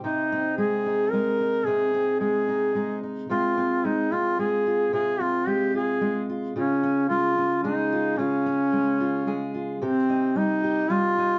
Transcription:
<<
  \new Staff \with { instrumentName = "Duduk" } { \time 3/4 \key aes \major \tempo 4 = 110 ees'4 aes'4 bes'4 | aes'4 aes'4. r8 | f'4 ees'8 f'8 aes'4 | aes'8 f'8 g'8 aes'4 r8 |
des'4 f'4 ees'4 | des'2~ des'8 r8 | c'4 ees'4 f'4 | }
  \new Staff \with { instrumentName = "Steel-string acoustic guitar" } { \time 3/4 \key aes \major << { ees'8 c'4 ees'8 ees'8 ees'8 | ees'8 c'4 ees'8 ees'8 ees'8 | <aes c'>8 c'4 c'8 f'8 f'8 | f'8 c'4 f'8 f'8 f'8 |
f'8 des'4 des'8 aes'8 f'8 | f'8 des'4 f'8 aes'8 f'8 | g'8 ees'4 g'8 ees'8 ees'8 | } \\ { c4 aes4 aes4 | c4 aes4 aes4 | c4 aes4 aes4 | c4 aes4 aes4 |
des4 aes4 aes4 | des4 aes4 aes4 | c4 g4 g4 | } >> }
>>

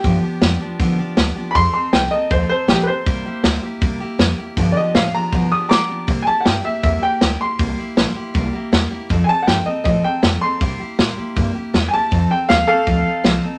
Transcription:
<<
  \new Staff \with { instrumentName = "Upright piano" } { \time 4/4 \key c \mixolydian \tempo 4 = 159 g'4. r2 r8 | <b'' c'''>8 c'''8 g''8 ees''8 c''8 c''8 g'8 <b' c''>8~ | <b' c''>4. r2 r8 | r8 <d'' ees''>8 f''8 bes''4 ees'''8 <bes'' d'''>4 |
r8 <aes'' a''>8 <fis'' g''>8 e''8 e''8 g''4 c'''8~ | c'''2~ c'''8 r4. | r8 <aes'' a''>8 <fis'' g''>8 ees''8 ees''8 g''4 c'''8~ | c'''2~ c'''8 r4 <aes'' a''>8~ |
<aes'' a''>8 g''8 f''8 <a' f''>2 r8 | }
  \new Staff \with { instrumentName = "Steel-string acoustic guitar" } { \time 4/4 \key c \mixolydian <g, d f b d' g'>8 <f b d' g'>8 <f b d' g'>8 <f b d' g'>8 <g, d f b d' g'>8 <f b d' g'>8 <f b g'>8 <f b d' g'>8 | <f c' ees' a'>8 <c' ees' a'>8 <f c' a'>8 <c' ees' a'>8 <f c' ees' a'>8 <c' ees' a'>8 <f c' ees' a'>8 <c' ees' a'>8 | <c g bes e' g'>8 <bes e' g'>8 <g bes e' g'>8 <bes e' g'>8 <c g bes e' g'>8 <bes e' g'>8 <g bes e' g'>8 <bes e' g'>8 | <g, d f b d' g'>8 <f b d' g'>8 <f b d' g'>8 <f b d' g'>8 <g, d f b d' g'>8 <f b d' g'>8 <f b d' g'>8 <f b d' g'>8 |
<c g bes e' g'>8 <bes e' g'>8 <g e' g'>8 <bes e' g'>8 <c g bes e' g'>8 <bes e' g'>8 <g bes e' g'>8 <bes e' g'>8 | <c g bes e' g'>8 <bes e' g'>8 <g bes e' g'>8 <bes e' g'>8 <c g bes e' g'>8 <bes e' g'>8 <g bes e' g'>8 <bes e' g'>8 | <f c' ees' a'>8 <c' ees' a'>8 <f c' ees' a'>8 <c' ees' a'>8 <f c' ees' a'>8 <c' ees' a'>8 <f c' ees' a'>8 <c' ees' a'>8 | <c g bes e' g'>8 <bes e' g'>8 <g bes e' g'>8 <bes e' g'>8 <c g bes e' g'>8 <bes e' g'>8 <g bes e' g'>8 <bes e' g'>8 |
<f c' ees' a'>8 <c' ees' a'>8 <f c' ees' a'>8 <c' ees' a'>8 <f c' ees' a'>8 <c' ees' a'>8 <f c' ees' a'>8 <c' ees' a'>8 | }
  \new Staff \with { instrumentName = "Upright bass" } { \clef bass \time 4/4 \key c \mixolydian g,8 r8 f,8 r4. d,8 r8 | f,8 r8 c,8 r8 ees,8 r8 bes,,8 r8 | c,8 r8 d,8 r8 e,8 r8 f,8 r8 | g,8 r8 a,8 r8 b,8 r8 d8 r8 |
c8 r8 g,8 r8 e,8 r8 d,8 r8 | c,8 r8 bes,,8 r8 c,8 r8 e,8 r8 | f,8 r8 g,8 r8 a,8 r8 f,8 r8 | c8 r8 bes,8 r8 g,8 r8 e,8 r8 |
f,8 r8 ees,8 r8 d,8 r8 c,8 r8 | }
  \new DrumStaff \with { instrumentName = "Drums" } \drummode { \time 4/4 <hho bd>4 <hho sn>4 <hho bd>4 <hho sn>4 | <hho bd>4 <hho sn>4 <hho bd>4 <hho sn>4 | <hho bd>4 <hho sn>4 <hho bd>4 <hho sn>4 | <hho bd>4 <hho sn>4 <hho bd>4 <hho sn>4 |
<hho bd>4 <hho sn>4 <hho bd>4 <hho sn>4 | <hho bd>4 <hho sn>4 <hho bd>4 <hho sn>4 | <hho bd>4 <hho sn>4 <hho bd>4 <hho sn>4 | <hho bd>4 <hho sn>4 <hho bd>4 <hho sn>4 |
<hho bd>4 <hho sn>4 <hho bd>4 <hho sn>4 | }
>>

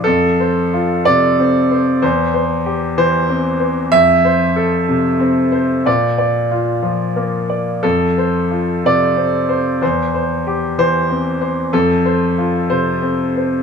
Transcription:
\new Staff \with { instrumentName = "Grand piano" } { \time 6/8 \key f \major \tempo 4. = 62 << { a'4. d''4. | c''4. c''4. | e''2. | d''4. r4. |
a'4. d''4. | c''4. c''4. | a'4. c''4. | } \\ { f,8 c''8 f'8 c8 c'8 c''8 | e,8 c''8 g'8 e8 c'8 c''8 | f,8 c''8 a'8 c8 c'8 c''8 | bes,8 d''8 f'8 f8 bes8 d''8 |
f,8 c''8 f'8 c8 c'8 c''8 | e,8 c''8 g'8 e8 c'8 c''8 | f,8 c''8 f'8 c8 c'8 c''8 | } >> }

